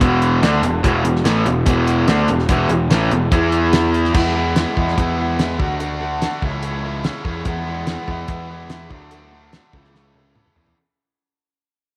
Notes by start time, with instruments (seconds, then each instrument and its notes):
0.00 picked electric bass E1, overdriven electric guitar E2 B2 E3, kick, closed hi-hat
0.22 closed hi-hat
0.42 picked electric bass D2, overdriven electric guitar D3 A3 D4, snare, closed hi-hat
0.62 picked electric bass E1, overdriven electric guitar E2 B2, closed hi-hat
0.83 picked electric bass E1, overdriven electric guitar E2 B2 E3, kick, closed hi-hat
1.05 picked electric bass E1, overdriven electric guitar E2 B2, closed hi-hat
1.16 snare
1.25 picked electric bass A1, overdriven electric guitar A2 E3 A3, snare, closed hi-hat
1.46 picked electric bass E1, overdriven electric guitar E2 B2, closed hi-hat
1.66 picked electric bass E1, overdriven electric guitar E2 B2 E3, kick, closed hi-hat
1.87 closed hi-hat
2.07 picked electric bass D2, overdriven electric guitar D3 A3 D4, snare, closed hi-hat
2.28 picked electric bass E1, overdriven electric guitar E2 B2, closed hi-hat
2.39 snare
2.49 picked electric bass E1, overdriven electric guitar E2 B2 E3, kick, closed hi-hat
2.69 picked electric bass E1, overdriven electric guitar E2 B2, closed hi-hat
2.90 picked electric bass A1, overdriven electric guitar A2 E3 A3, snare, closed hi-hat
3.11 picked electric bass E1, overdriven electric guitar E2 B2, closed hi-hat
3.31 picked electric bass E2, overdriven electric guitar E3 B3 E4, kick, closed hi-hat
3.52 closed hi-hat
3.73 snare, closed hi-hat
3.94 closed hi-hat
4.04 snare
4.14 picked electric bass E2, overdriven electric guitar E3 G#3 B3 E4, kick, crash
4.35 overdriven electric guitar E3 G#3 B3 E4
4.56 overdriven electric guitar E3 G#3 B3 E4, snare, closed hi-hat
4.76 picked electric bass E2, overdriven electric guitar E3 G#3 B3 E4, kick
4.88 snare
4.97 picked electric bass E2, overdriven electric guitar E3 G#3 B3 E4, kick, closed hi-hat
5.18 overdriven electric guitar E3 G#3 B3 E4
5.39 overdriven electric guitar E3 G#3 B3 E4, snare, closed hi-hat
5.59 picked electric bass D2, overdriven electric guitar D3 A3 D4 F#4, kick
5.80 overdriven electric guitar D3 A3 D4 F#4, closed hi-hat
6.00 overdriven electric guitar D3 A3 D4 F#4
6.21 overdriven electric guitar D3 A3 D4 F#4, snare, closed hi-hat
6.42 picked electric bass C#2, overdriven electric guitar C#3 A3 C#4 E4, kick
6.63 overdriven electric guitar C#3 A3 C#4 E4, closed hi-hat
6.84 overdriven electric guitar C#3 A3 C#4 E4
7.04 overdriven electric guitar C#3 A3 C#4 E4, snare, closed hi-hat
7.25 picked electric bass E2, overdriven electric guitar C#3 A3 C#4 E4, kick
7.45 picked electric bass E2, overdriven electric guitar E3 G#3 B3 E4, kick, closed hi-hat
7.65 overdriven electric guitar E3 G#3 B3 E4
7.87 overdriven electric guitar E3 G#3 B3 E4, snare, closed hi-hat
8.07 picked electric bass E2, overdriven electric guitar E3 G#3 B3 E4, kick
8.28 picked electric bass E2, overdriven electric guitar E3 G#3 B3 E4, kick, closed hi-hat
8.49 overdriven electric guitar E3 G#3 B3 E4
8.70 overdriven electric guitar E3 G#3 B3 E4, snare, closed hi-hat
8.90 picked electric bass D2, overdriven electric guitar D3 F#3 A3 D4, kick
9.11 overdriven electric guitar D3 F#3 A3 D4, closed hi-hat
9.32 overdriven electric guitar D3 F#3 A3 D4
9.52 overdriven electric guitar D3 F#3 A3 D4, snare, closed hi-hat
9.73 picked electric bass C#2, overdriven electric guitar C#3 E3 A3 C#4, kick
9.84 snare
9.94 overdriven electric guitar C#3 E3 A3 C#4, snare
10.15 overdriven electric guitar C#3 E3 A3 C#4, high tom
10.35 overdriven electric guitar C#3 E3 A3 C#4, mid tom
10.46 mid tom
10.56 picked electric bass E2, overdriven electric guitar C#3 E3 A3 C#4, floor tom
10.67 floor tom